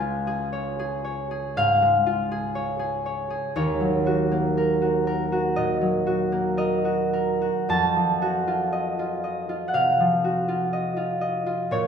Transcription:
Already playing: C#2 G#3 C#5 G#5
0.00 F4
0.27 G#4
0.53 C#5
0.79 G#4
1.04 C#5
1.31 G#4
1.57 G#2 F5
1.82 G#3
2.06 F4
2.32 G#4
2.55 C#5
2.79 G#4
3.06 C#5
3.30 G#4
3.56 D#2 C#5
3.80 F#3
4.06 F#4
4.31 A#3
4.57 A#4
4.82 F#4
5.07 A#4
5.32 F#4
5.56 A#2 D#5
5.81 F#3
6.07 F#4
6.32 A#3
6.57 A#4 D#5
6.85 F#4
7.13 A#4
7.42 F#4
7.69 F2 A5
7.96 F3
8.22 F#4
8.48 F4
8.73 D#5
8.99 F4
9.24 D#5
9.49 F4
9.68 F#5
9.74 C3 F5
10.00 F3
10.24 F#4
10.48 F4
10.73 D#5
10.97 F4
11.21 D#5
11.46 F4
11.71 A#2 C#5

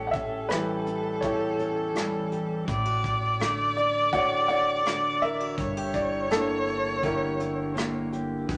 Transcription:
Already playing: A1 A2 G4 A4 C#5
0.07 F#5
0.11 E5, kick, closed hi-hat
0.15 C#4
0.49 E3 G3 E4 G4 B4, cross-stick, closed hi-hat
0.86 closed hi-hat
1.21 E2 E4 G4 C#5, kick, closed hi-hat
1.59 C#4, closed hi-hat
1.95 E3 G3, cross-stick, closed hi-hat
2.32 G4, closed hi-hat
2.67 A1 A2 E4 D5, kick, closed hi-hat
2.85 F#4
3.04 kick, closed hi-hat
3.40 D3 A3, cross-stick, closed hi-hat
3.77 D5, closed hi-hat
4.13 A2 F#4 C#5 D5 F#5, kick, closed hi-hat
4.48 C#5 D5 F#5, closed hi-hat
4.85 D3, cross-stick, closed hi-hat
5.22 E4 A#4 E5, closed hi-hat
5.40 F#4
5.57 G1 G2 E4 C#5, kick, closed hi-hat
5.77 G4
5.94 E4 D5, kick, closed hi-hat
6.30 D3 A#3 D4 E4 A4, cross-stick, closed hi-hat
6.67 closed hi-hat
7.03 D3 D4 E4 G4 A#4, kick, closed hi-hat
7.40 E4, closed hi-hat
7.75 D3 A#3, cross-stick, closed hi-hat
8.12 G4, closed hi-hat
8.48 E1 E2 G4 B4, kick, closed hi-hat

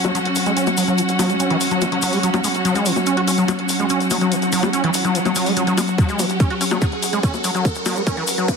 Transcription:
Already playing: F#3 C#4 F#4 F#5, riser
0.04 F#1 F#3, closed hi-hat, high bongo, cabasa
0.15 F#3, closed hi-hat, cabasa
0.25 F#1, closed hi-hat
0.35 F#1, open hi-hat, cabasa
0.46 E1 G#3, closed hi-hat, cabasa
0.57 C#4, closed hi-hat, cabasa
0.67 F#1, closed hi-hat, high bongo, cabasa
0.77 F#1 F#3, open hi-hat, cabasa
0.88 F#1 F#3, cabasa
0.98 E3, closed hi-hat, cabasa
1.09 F#1, closed hi-hat, cabasa
1.19 F#1 F#3, open hi-hat, high bongo, cabasa
1.30 F#1 G#3, closed hi-hat, cabasa
1.40 C#4, closed hi-hat, cabasa
1.50 F#1 E3, closed hi-hat
1.61 F#1, open hi-hat, cabasa
1.71 F#1 F#3, closed hi-hat, cabasa
1.81 E3, closed hi-hat, high bongo, cabasa
1.92 F#1 F#3, closed hi-hat
2.02 F#1 F#3, open hi-hat, cabasa
2.12 E1 G#3, open hi-hat, cabasa
2.23 F#3, closed hi-hat, cabasa
2.34 F#1 F#3, closed hi-hat, high bongo, cabasa
2.44 F#1 G#3, open hi-hat, cabasa
2.55 F#1, closed hi-hat, cabasa
2.65 F#3, closed hi-hat, cabasa
2.75 F#1 G#3, closed hi-hat, cabasa
2.86 F#1 E3, open hi-hat, cabasa
2.96 F#1, closed hi-hat, high bongo, cabasa
3.06 C#4, closed hi-hat, cabasa
3.17 F#1 F#4, closed hi-hat
3.27 F#1 C#4, open hi-hat, cabasa
3.37 F#1 F#3, closed hi-hat, cabasa
3.48 F#3, closed hi-hat, high bongo, cabasa
3.59 F#1, closed hi-hat
3.69 F#1, open hi-hat, cabasa
3.80 E1 G#3, closed hi-hat, cabasa
3.89 C#4, closed hi-hat, cabasa
4.00 F#1, closed hi-hat, cabasa
4.10 F#1 F#3, open hi-hat, high bongo, cabasa
4.21 F#1 F#3, closed hi-hat, cabasa
4.32 E3, closed hi-hat, cabasa
4.42 F#1, closed hi-hat, cabasa
4.52 F#1 F#3, open hi-hat, cabasa
4.63 F#1 G#3, closed hi-hat, high bongo, cabasa
4.73 C#4, closed hi-hat, cabasa
4.84 F#1 E3, closed hi-hat
4.94 F#1, open hi-hat, cabasa
5.05 F#1 F#3, closed hi-hat, cabasa
5.15 E3, closed hi-hat, cabasa
5.25 F#3, closed hi-hat, high bongo, cabasa
5.35 F#1 F#3, open hi-hat, cabasa
5.46 E1 G#3, open hi-hat, cabasa
5.56 F#3, closed hi-hat, cabasa
5.67 F#1 F#3, closed hi-hat, cabasa
5.78 F#1 G#3, open hi-hat, high bongo, cabasa
5.88 F#1, closed hi-hat, cabasa
5.98 F#3, kick, closed hi-hat, cabasa
6.09 F#1 G#3, closed hi-hat, cabasa
6.19 F#1 E3, open hi-hat, high bongo, cabasa
6.29 F#1, closed hi-hat, cabasa
6.40 C#4, kick, closed hi-hat, cabasa
6.50 F#4, closed hi-hat
6.61 F#1 C#4, open hi-hat, cabasa
6.71 F#3, high bongo, cabasa
6.82 F#3, kick, closed hi-hat, cabasa
6.92 F#1, closed hi-hat
7.03 F#1, open hi-hat, cabasa
7.13 E1 G#3, closed hi-hat, cabasa
7.23 C#4, kick, closed hi-hat, cabasa
7.34 F#1, closed hi-hat, high bongo, cabasa
7.44 F#1 F#3, open hi-hat, cabasa
7.55 F#1 F#3, closed hi-hat, cabasa
7.65 E3, kick, closed hi-hat, cabasa
7.75 F#1, closed hi-hat, cabasa
7.86 F#3, open hi-hat, high bongo, cabasa
7.96 F#1 G#3, closed hi-hat, cabasa
8.07 C#4, kick, closed hi-hat, cabasa
8.17 F#1 E3, closed hi-hat
8.27 F#1, open hi-hat, cabasa
8.38 F#1 F#3, closed hi-hat, cabasa
8.48 E3, kick, closed hi-hat, high bongo, cabasa

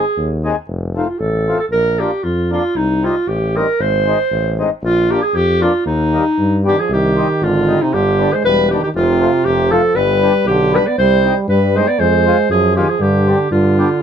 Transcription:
Already playing: G#4
0.17 D#2
0.44 C4 D#4 G#4
0.68 F1
0.95 A3 C4 D#4 F4
1.08 F4
1.19 A1 A4
1.48 A3 C4 F4
1.60 A4
1.71 A#1 A#4
1.99 A#3 D4 F4 G4
2.23 F2 F4
2.51 A#3 D4 F4
2.76 C2 D#4
3.03 G3 C4 D#4 F4
3.28 A1 G4
3.55 G3 C4 D#4 A#4
3.80 G#1 C5
4.06 G#3 C4 D#4
4.31 A1
4.58 G#3 C4 D#4
4.83 A#1 F4
5.09 F3 A#3 D4 G4
5.22 G#4
5.35 F2 G4
5.60 F3 A#3 D4 F4
5.86 D#2 D#4
6.12 G3 A#3 D#4
6.38 G2
6.64 G3 B3 D4 G4
6.70 D#3
6.80 F3 G#4
6.89 C2 D#3 G4
7.17 G3 C4 D#4
7.41 G#1 D3 F4
7.67 G3 C4 D#4
7.82 C3 D#4
7.93 G1 D3 G4
8.18 G3 B3 D4
8.33 G#3 C5
8.43 E1 G3 B4
8.70 D#3 G3 B3 D4 G4
8.84 D#3 G4
8.94 F1 C3 F4
9.20 A3 C4 F4
9.45 F1 C3 G4
9.71 F3 A3 C4 F4 A4
9.95 G1 G3 B4
10.22 B3 D4 G4
10.46 B1 D3 G4
10.71 B3 D4 G4 B4
10.77 G3
10.87 B3 D5
10.98 C2 G3 C5
11.24 C4 D#4 G4
11.48 G2 G3 B4
11.75 G#3 C4 D#4 G4 C5
11.88 B3 D5
11.99 F2 G#3 C5
12.26 C4 F4 G#4
12.49 F#2 F3 G#4
12.76 D#3 C4 F4 G4 G#4
12.89 F3 G#4
13.00 G2 D3 G4
13.27 C4 D4 G4
13.50 G2 D3 F4
13.78 B3 D4 G4

